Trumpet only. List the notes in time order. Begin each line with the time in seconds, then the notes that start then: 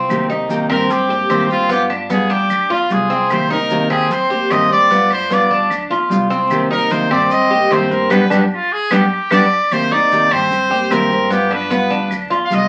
0.70 A#4
0.91 G4
1.51 F4
1.72 G4
2.13 G#4
2.31 G4
2.72 F4
2.93 G#4
3.32 C5
3.52 A#4
3.91 G#4
4.12 C5
4.52 D#5
4.72 D5
5.12 C5
5.33 D5
6.72 A#4
6.92 C5
7.12 D5
7.32 D#5
7.73 C5
7.91 A#4
8.11 B4
8.32 D4
8.54 F4
8.72 G#4
8.94 G4
9.32 D5
9.73 C5
9.92 D5
10.32 C5
10.92 A#4
11.33 G4
11.53 B4
12.45 F5
12.54 D#5